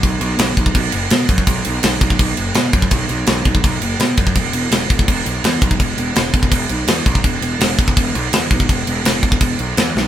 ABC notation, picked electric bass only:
X:1
M:4/4
L:1/8
Q:1/4=166
K:none
V:1 name="Picked electric bass" clef=bass
B,,, B,,, B,,, B,,, B,,, ^F,,, B,, ^F,, | B,,, B,,, B,,, B,,, B,,, ^F,,, B,, ^F,, | B,,, B,,, B,,, B,,, B,,, ^F,,, B,, ^F,, | E,,, E,,, E,,, E,,, E,,, B,,, E,, B,,, |
E,,, E,,, E,,, E,,, E,,, B,,, E,, B,,, | E,,, E,,, E,,, E,,, E,,, B,,, E,, B,,, | E,,, E,,, E,,, E,,, E,,, B,,, E,, B,,, |]